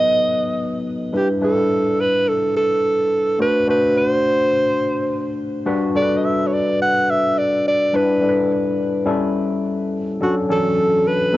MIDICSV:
0, 0, Header, 1, 3, 480
1, 0, Start_track
1, 0, Key_signature, 2, "major"
1, 0, Tempo, 566786
1, 960, Time_signature, 4, 2, 24, 8
1, 9629, End_track
2, 0, Start_track
2, 0, Title_t, "Alto saxophone"
2, 0, Program_c, 0, 65
2, 0, Note_on_c, 0, 75, 92
2, 726, Note_off_c, 0, 75, 0
2, 985, Note_on_c, 0, 67, 65
2, 1087, Note_off_c, 0, 67, 0
2, 1222, Note_on_c, 0, 69, 86
2, 1700, Note_on_c, 0, 71, 84
2, 1713, Note_off_c, 0, 69, 0
2, 1935, Note_on_c, 0, 69, 87
2, 1948, Note_off_c, 0, 71, 0
2, 2167, Note_off_c, 0, 69, 0
2, 2174, Note_on_c, 0, 69, 89
2, 2852, Note_off_c, 0, 69, 0
2, 2893, Note_on_c, 0, 71, 91
2, 3109, Note_off_c, 0, 71, 0
2, 3135, Note_on_c, 0, 71, 94
2, 3367, Note_on_c, 0, 72, 93
2, 3379, Note_off_c, 0, 71, 0
2, 4562, Note_off_c, 0, 72, 0
2, 5048, Note_on_c, 0, 74, 88
2, 5227, Note_on_c, 0, 75, 60
2, 5240, Note_off_c, 0, 74, 0
2, 5289, Note_on_c, 0, 76, 79
2, 5301, Note_off_c, 0, 75, 0
2, 5479, Note_on_c, 0, 73, 62
2, 5492, Note_off_c, 0, 76, 0
2, 5535, Note_on_c, 0, 74, 70
2, 5548, Note_off_c, 0, 73, 0
2, 5766, Note_off_c, 0, 74, 0
2, 5776, Note_on_c, 0, 78, 91
2, 6014, Note_on_c, 0, 76, 83
2, 6027, Note_off_c, 0, 78, 0
2, 6249, Note_on_c, 0, 74, 76
2, 6262, Note_off_c, 0, 76, 0
2, 6483, Note_off_c, 0, 74, 0
2, 6500, Note_on_c, 0, 74, 87
2, 6741, Note_on_c, 0, 71, 74
2, 6754, Note_off_c, 0, 74, 0
2, 7209, Note_off_c, 0, 71, 0
2, 8664, Note_on_c, 0, 66, 65
2, 8766, Note_off_c, 0, 66, 0
2, 8904, Note_on_c, 0, 69, 96
2, 9382, Note_on_c, 0, 71, 81
2, 9394, Note_off_c, 0, 69, 0
2, 9629, Note_off_c, 0, 71, 0
2, 9629, End_track
3, 0, Start_track
3, 0, Title_t, "Tine electric piano"
3, 0, Program_c, 1, 4
3, 0, Control_c, 1, 64, 127
3, 0, Note_on_c, 1, 54, 68
3, 0, Note_on_c, 1, 59, 54
3, 0, Note_on_c, 1, 63, 60
3, 0, Note_on_c, 1, 69, 76
3, 0, Note_on_c, 1, 71, 67
3, 954, Note_on_c, 1, 55, 68
3, 956, Note_on_c, 1, 62, 62
3, 961, Note_on_c, 1, 64, 58
3, 963, Note_off_c, 1, 71, 0
3, 963, Note_on_c, 1, 71, 66
3, 970, Control_c, 1, 64, 0
3, 973, Note_off_c, 1, 69, 0
3, 976, Note_off_c, 1, 54, 0
3, 977, Note_off_c, 1, 59, 0
3, 978, Note_off_c, 1, 63, 0
3, 1099, Control_c, 1, 64, 127
3, 1136, Note_off_c, 1, 55, 0
3, 1137, Note_off_c, 1, 62, 0
3, 1140, Note_off_c, 1, 64, 0
3, 1141, Note_off_c, 1, 71, 0
3, 1197, Note_on_c, 1, 55, 66
3, 1197, Note_on_c, 1, 62, 56
3, 1201, Note_on_c, 1, 64, 62
3, 1206, Note_on_c, 1, 71, 70
3, 1898, Note_off_c, 1, 55, 0
3, 1898, Note_off_c, 1, 62, 0
3, 1900, Note_off_c, 1, 64, 0
3, 1902, Note_off_c, 1, 71, 0
3, 2869, Note_on_c, 1, 57, 72
3, 2873, Note_on_c, 1, 62, 58
3, 2877, Note_on_c, 1, 66, 67
3, 2882, Note_on_c, 1, 72, 73
3, 2889, Control_c, 1, 64, 0
3, 3040, Control_c, 1, 64, 127
3, 3053, Note_off_c, 1, 57, 0
3, 3056, Note_off_c, 1, 62, 0
3, 3058, Note_off_c, 1, 66, 0
3, 3060, Note_off_c, 1, 72, 0
3, 3112, Note_on_c, 1, 57, 63
3, 3112, Note_on_c, 1, 62, 59
3, 3120, Note_on_c, 1, 66, 65
3, 3124, Note_on_c, 1, 72, 71
3, 3815, Note_off_c, 1, 57, 0
3, 3815, Note_off_c, 1, 62, 0
3, 3819, Note_off_c, 1, 66, 0
3, 3821, Note_off_c, 1, 72, 0
3, 4790, Note_on_c, 1, 55, 76
3, 4792, Note_on_c, 1, 62, 80
3, 4796, Note_on_c, 1, 66, 78
3, 4800, Note_on_c, 1, 71, 89
3, 4810, Control_c, 1, 64, 0
3, 4974, Note_off_c, 1, 55, 0
3, 4975, Note_off_c, 1, 62, 0
3, 4976, Control_c, 1, 64, 127
3, 4977, Note_off_c, 1, 66, 0
3, 4979, Note_off_c, 1, 71, 0
3, 5036, Note_on_c, 1, 55, 63
3, 5037, Note_on_c, 1, 62, 62
3, 5042, Note_on_c, 1, 66, 58
3, 5044, Note_on_c, 1, 69, 56
3, 5099, Note_on_c, 1, 71, 71
3, 5100, Note_off_c, 1, 69, 0
3, 5737, Note_off_c, 1, 55, 0
3, 5737, Note_off_c, 1, 62, 0
3, 5740, Note_off_c, 1, 66, 0
3, 5768, Note_off_c, 1, 71, 0
3, 6715, Note_on_c, 1, 55, 63
3, 6722, Note_on_c, 1, 62, 67
3, 6725, Note_on_c, 1, 64, 62
3, 6725, Note_on_c, 1, 71, 81
3, 6729, Control_c, 1, 64, 0
3, 6896, Note_off_c, 1, 55, 0
3, 6899, Note_off_c, 1, 62, 0
3, 6901, Note_off_c, 1, 64, 0
3, 6901, Note_off_c, 1, 71, 0
3, 6902, Control_c, 1, 64, 127
3, 6954, Note_on_c, 1, 55, 62
3, 6955, Note_on_c, 1, 62, 60
3, 6957, Note_on_c, 1, 64, 54
3, 6962, Note_on_c, 1, 69, 57
3, 7019, Note_off_c, 1, 69, 0
3, 7020, Note_on_c, 1, 71, 78
3, 7656, Note_off_c, 1, 55, 0
3, 7656, Note_off_c, 1, 62, 0
3, 7657, Note_off_c, 1, 64, 0
3, 7670, Note_on_c, 1, 55, 82
3, 7670, Note_on_c, 1, 61, 82
3, 7675, Note_on_c, 1, 64, 82
3, 7679, Note_on_c, 1, 69, 93
3, 7687, Control_c, 1, 64, 0
3, 7688, Note_off_c, 1, 71, 0
3, 7819, Control_c, 1, 64, 127
3, 8445, Note_off_c, 1, 55, 0
3, 8445, Note_off_c, 1, 61, 0
3, 8448, Note_off_c, 1, 64, 0
3, 8450, Note_off_c, 1, 69, 0
3, 8638, Note_on_c, 1, 54, 66
3, 8644, Note_on_c, 1, 61, 64
3, 8644, Note_on_c, 1, 62, 64
3, 8647, Control_c, 1, 64, 0
3, 8652, Note_on_c, 1, 69, 77
3, 8811, Control_c, 1, 64, 127
3, 8818, Note_off_c, 1, 54, 0
3, 8820, Note_off_c, 1, 61, 0
3, 8820, Note_off_c, 1, 62, 0
3, 8825, Note_off_c, 1, 69, 0
3, 8884, Note_on_c, 1, 52, 55
3, 8885, Note_on_c, 1, 61, 64
3, 8888, Note_on_c, 1, 62, 59
3, 8894, Note_on_c, 1, 69, 79
3, 8935, Note_on_c, 1, 54, 69
3, 8940, Note_off_c, 1, 52, 0
3, 9578, Note_off_c, 1, 54, 0
3, 9581, Note_off_c, 1, 61, 0
3, 9583, Note_off_c, 1, 62, 0
3, 9586, Note_off_c, 1, 69, 0
3, 9588, Note_on_c, 1, 54, 68
3, 9593, Note_on_c, 1, 59, 68
3, 9598, Note_on_c, 1, 63, 76
3, 9603, Note_on_c, 1, 69, 80
3, 9610, Control_c, 1, 64, 0
3, 9629, Note_off_c, 1, 54, 0
3, 9629, Note_off_c, 1, 59, 0
3, 9629, Note_off_c, 1, 63, 0
3, 9629, Note_off_c, 1, 69, 0
3, 9629, End_track
0, 0, End_of_file